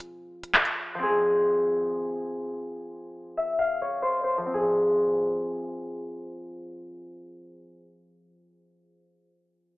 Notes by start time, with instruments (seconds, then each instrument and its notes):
Already playing: 808-style bass E1, harp F3 C4 G#4
0.00 closed hi-hat
0.43 closed hi-hat
0.54 clap
0.65 closed hi-hat
0.94 harp F3
0.99 harp C4
1.03 harp G#4
3.37 harp E5
3.59 harp F5
3.82 harp C#5
4.02 harp C5
4.24 harp C5
4.38 harp F3
4.46 harp C4
4.54 harp G#4